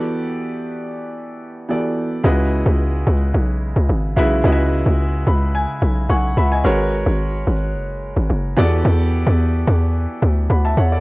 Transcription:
<<
  \new Staff \with { instrumentName = "Grand piano" } { \time 4/4 \key cis \minor \tempo 4 = 109 << { r1 | r1 | r4. b''8 gis''8 r8 <fis'' gis'' cis'''>8 <e'' fis'' b''>16 <dis'' gis''>16~ | <dis'' gis''>16 r2. r8. |
r2. <fis'' b''>16 <e'' a''>16 <cis'' fis''>16 <a' d''>16 | } \\ { <e b fis' g' a' d''>2. <e b fis' g' a' d''>4 | <cis gis e' fis' b' dis''>4. r2 <cis gis e' fis' b' e''>8 | <cis gis e' fis' b' dis'' e''>4. r2 r8 | <gis fis' ais' b' cis''>4. r2 <e b fis' g' a' d''>8~ |
<e b fis' g' a' d''>4 r2. | } >> }
  \new Staff \with { instrumentName = "Log drum bass" } { \clef bass \time 4/4 \key cis \minor r1 | cis,8. cis,8. cis,8 b,,8. cis,16 gis,,8 b,,8 | cis,8. cis,8. cis,8. r16 b,,8 b,,8 cis,8 | gis,,8. gis,,8. gis,,8 fis,,8. gis,,16 fis,,8 e,8 |
e,8. e,8. e,8. r16 d,8 d,8 e,8 | }
>>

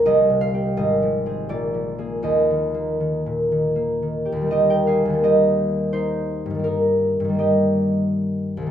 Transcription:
<<
  \new Staff \with { instrumentName = "Harp" } { \time 3/4 \key ees \major \tempo 4 = 84 ees''8 f''8 ees''4 d''4 | ees''2. | <g' ees''>16 <bes' g''>16 <aes' f''>8 <g' ees''>4 <ees' c''>4 | <ees' bes'>4 <g' ees''>2 | }
  \new Staff \with { instrumentName = "Harp" } { \clef bass \time 3/4 \key ees \major << { \tuplet 3/2 { c,8 c8 <c' g'>8 aes,,8 f8 <c' aes'>8 bes,,8 f8 <bes aes'>8 } | \tuplet 3/2 { ees,8 ees8 bes8 ees8 bes,8 ees8 bes8 ees8 g'8~ } | g'2.~ | g'2. | } \\ { r2. | r2. | <ees, ees g bes>4 <ees, ees g bes>2 | <g, ees g bes>4 <g, ees g bes>2 | } >> }
>>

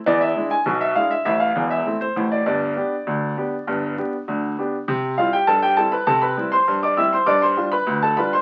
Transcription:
<<
  \new Staff \with { instrumentName = "Upright piano" } { \time 2/4 \key c \major \tempo 4 = 100 d''16 e''8 gis''8 e''16 f''16 e''16 | e''16 f''8 e''8 c''8 d''16 | d''2~ | d''4. r8 |
r8 <f' f''>16 <g' g''>16 <a' a''>16 <g' g''>16 <a' a''>16 <b' b''>16 | <a' a''>16 <b' b''>8 <c'' c'''>8 <d'' d'''>16 <e'' e'''>16 <c'' c'''>16 | <d'' d'''>16 <c'' c'''>8 <b' b''>8 <a' a''>16 <b' b''>16 <c'' c'''>16 | }
  \new Staff \with { instrumentName = "Upright piano" } { \clef bass \time 2/4 \key c \major <e, e>8 <gis d' e'>8 <b,, b,>8 <gis d' e'>8 | <a,, a,>8 <e,, e,>8 <a c' e'>8 <a,, a,>8 | <g,, g,>8 <b d' g'>8 <d, d>8 <b d' g'>8 | <g,, g,>8 <b d' g'>8 <d, d>8 <b d' g'>8 |
c8 <g c' e'>8 g,8 <g c' e'>8 | c8 <g c' e'>8 g,8 <g c' e'>8 | g,8 <g d' f'>8 d,8 <g d' f'>8 | }
>>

